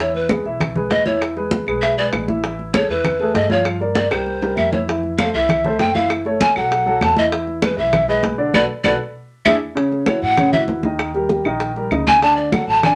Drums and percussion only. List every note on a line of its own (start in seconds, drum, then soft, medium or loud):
0.00 high bongo medium
0.00 high conga soft
0.15 high conga soft
0.29 high bongo medium
0.29 high conga loud
0.29 claves medium
0.45 high conga soft
0.60 high bongo medium
0.60 high conga soft
0.60 low conga medium
0.60 claves medium
0.75 high conga soft
0.75 low conga medium
0.91 high bongo medium
0.91 low bongo medium
0.91 high conga medium
1.06 high conga medium
1.21 high bongo medium
1.21 high conga soft
1.21 claves medium
1.37 high bongo soft
1.37 high conga soft
1.51 high bongo medium
1.51 high conga medium
1.67 high bongo soft
1.67 high conga soft
1.67 claves medium
1.83 high bongo medium
1.83 high conga soft
1.98 high bongo soft
1.98 high conga soft
2.13 high bongo medium
2.13 low bongo medium
2.13 high conga medium
2.13 claves medium
2.28 high conga medium
2.44 high bongo medium
2.44 high conga soft
2.59 high conga soft
2.74 high bongo medium
2.74 high conga loud
2.74 claves medium
2.89 high conga soft
3.04 high bongo medium
3.04 high conga soft
3.04 low conga medium
3.04 claves medium
3.19 high conga soft
3.35 high bongo medium
3.35 low bongo medium
3.35 high conga medium
3.50 high conga medium
3.65 high bongo medium
3.65 high conga soft
3.65 claves medium
3.80 high bongo soft
3.80 high conga soft
3.95 high bongo medium
3.95 high conga medium
4.11 high bongo loud
4.11 high conga soft
4.11 claves medium
4.26 high conga soft
4.42 low bongo medium
4.42 high conga soft
4.57 high conga medium
4.57 claves medium
4.72 low bongo loud
4.72 high conga medium
4.88 high bongo medium
4.88 high conga soft
5.03 high conga soft
5.18 high bongo medium
5.18 high conga medium
5.18 claves medium
5.34 high conga soft
5.49 high bongo medium
5.49 high conga soft
5.49 low conga medium
5.49 claves medium
5.64 high conga soft
5.64 low conga medium
5.79 high bongo medium
5.79 low bongo medium
5.79 high conga medium
5.95 high conga medium
6.10 high bongo medium
6.10 high conga soft
6.10 claves medium
6.25 high bongo soft
6.25 high conga soft
6.41 high bongo medium
6.41 high conga loud
6.56 high bongo soft
6.56 high conga soft
6.56 claves medium
6.71 high bongo medium
6.71 high conga soft
6.86 high bongo soft
6.86 high conga soft
7.01 high bongo medium
7.01 low bongo medium
7.01 high conga medium
7.01 claves medium
7.17 high conga medium
7.32 high bongo medium
7.32 high conga soft
7.47 high conga soft
7.62 high bongo medium
7.62 high conga loud
7.62 claves medium
7.78 high conga soft
7.93 high bongo medium
7.93 high conga soft
7.93 low conga medium
7.93 claves medium
8.08 high conga soft
8.23 high bongo medium
8.23 low bongo medium
8.23 high conga medium
8.54 low bongo loud
8.54 high conga loud
8.54 claves medium
8.84 low bongo loud
8.84 high conga medium
8.84 claves loud
9.46 low bongo loud
9.46 high conga medium
9.46 claves loud
9.76 high bongo medium
9.76 high conga soft
9.92 high bongo soft
9.92 high conga soft
10.06 high bongo medium
10.06 high conga medium
10.06 claves medium
10.22 high conga soft
10.37 high bongo medium
10.37 high conga soft
10.37 low conga medium
10.37 claves medium
10.53 high bongo soft
10.53 high conga soft
10.53 low conga medium
10.68 high bongo soft
10.68 low bongo medium
10.68 high conga medium
10.83 high bongo soft
10.83 high conga medium
10.99 high bongo medium
10.99 high conga soft
10.99 claves medium
11.14 high bongo soft
11.14 high conga soft
11.29 high bongo medium
11.29 high conga medium
11.45 high conga soft
11.45 claves medium
11.60 high bongo medium
11.60 high conga soft
11.76 high bongo soft
11.76 high conga soft
11.91 high bongo soft
11.91 low bongo medium
11.91 high conga medium
11.91 claves medium
12.07 high bongo soft
12.07 high conga medium
12.22 high bongo medium
12.22 high conga soft
12.38 high bongo soft
12.38 high conga soft
12.52 high bongo medium
12.52 high conga loud
12.52 claves medium
12.68 high conga soft
12.83 high bongo medium
12.83 high conga soft
12.83 low conga medium
12.83 claves medium